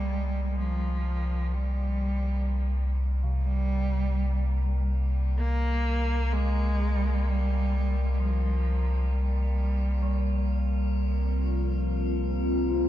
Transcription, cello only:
0, 0, Header, 1, 2, 480
1, 0, Start_track
1, 0, Tempo, 952381
1, 1725, Time_signature, 4, 2, 24, 8
1, 6495, End_track
2, 0, Start_track
2, 0, Title_t, "Cello"
2, 0, Program_c, 0, 42
2, 0, Note_on_c, 0, 55, 97
2, 292, Note_on_c, 0, 53, 83
2, 300, Note_off_c, 0, 55, 0
2, 773, Note_on_c, 0, 55, 85
2, 781, Note_off_c, 0, 53, 0
2, 1489, Note_off_c, 0, 55, 0
2, 1720, Note_on_c, 0, 55, 108
2, 2423, Note_off_c, 0, 55, 0
2, 2708, Note_on_c, 0, 58, 100
2, 3187, Note_on_c, 0, 56, 110
2, 3195, Note_off_c, 0, 58, 0
2, 3667, Note_on_c, 0, 55, 101
2, 3675, Note_off_c, 0, 56, 0
2, 4100, Note_off_c, 0, 55, 0
2, 4100, Note_on_c, 0, 55, 58
2, 4127, Note_on_c, 0, 53, 76
2, 4135, Note_off_c, 0, 55, 0
2, 4600, Note_on_c, 0, 55, 80
2, 4607, Note_off_c, 0, 53, 0
2, 5322, Note_off_c, 0, 55, 0
2, 6495, End_track
0, 0, End_of_file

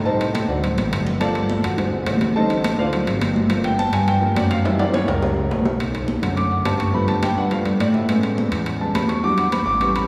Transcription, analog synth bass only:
0, 0, Header, 1, 2, 480
1, 0, Start_track
1, 0, Key_signature, -2, "minor"
1, 0, Tempo, 286670
1, 102, Time_signature, 4, 2, 24, 8
1, 9705, Key_signature, 2, "minor"
1, 16865, End_track
2, 0, Start_track
2, 0, Title_t, "Analog synth bass"
2, 0, Program_c, 0, 38
2, 0, Note_on_c, 0, 45, 98
2, 723, Note_off_c, 0, 45, 0
2, 807, Note_on_c, 0, 38, 83
2, 1262, Note_off_c, 0, 38, 0
2, 1287, Note_on_c, 0, 33, 76
2, 1514, Note_off_c, 0, 33, 0
2, 1524, Note_on_c, 0, 31, 98
2, 2645, Note_off_c, 0, 31, 0
2, 2734, Note_on_c, 0, 28, 86
2, 3410, Note_off_c, 0, 28, 0
2, 3458, Note_on_c, 0, 33, 90
2, 4572, Note_off_c, 0, 33, 0
2, 4664, Note_on_c, 0, 38, 78
2, 5112, Note_off_c, 0, 38, 0
2, 5140, Note_on_c, 0, 32, 68
2, 5367, Note_off_c, 0, 32, 0
2, 5375, Note_on_c, 0, 31, 102
2, 6490, Note_off_c, 0, 31, 0
2, 6571, Note_on_c, 0, 43, 76
2, 7247, Note_off_c, 0, 43, 0
2, 7292, Note_on_c, 0, 42, 103
2, 8407, Note_off_c, 0, 42, 0
2, 8497, Note_on_c, 0, 37, 77
2, 8947, Note_off_c, 0, 37, 0
2, 8975, Note_on_c, 0, 37, 78
2, 9203, Note_off_c, 0, 37, 0
2, 9213, Note_on_c, 0, 35, 104
2, 10328, Note_off_c, 0, 35, 0
2, 10415, Note_on_c, 0, 42, 88
2, 11090, Note_off_c, 0, 42, 0
2, 11137, Note_on_c, 0, 43, 95
2, 12250, Note_off_c, 0, 43, 0
2, 12337, Note_on_c, 0, 43, 83
2, 12788, Note_off_c, 0, 43, 0
2, 12819, Note_on_c, 0, 43, 65
2, 13045, Note_off_c, 0, 43, 0
2, 13056, Note_on_c, 0, 45, 93
2, 14170, Note_off_c, 0, 45, 0
2, 14258, Note_on_c, 0, 40, 86
2, 14931, Note_off_c, 0, 40, 0
2, 14974, Note_on_c, 0, 40, 94
2, 16088, Note_off_c, 0, 40, 0
2, 16175, Note_on_c, 0, 33, 86
2, 16849, Note_off_c, 0, 33, 0
2, 16865, End_track
0, 0, End_of_file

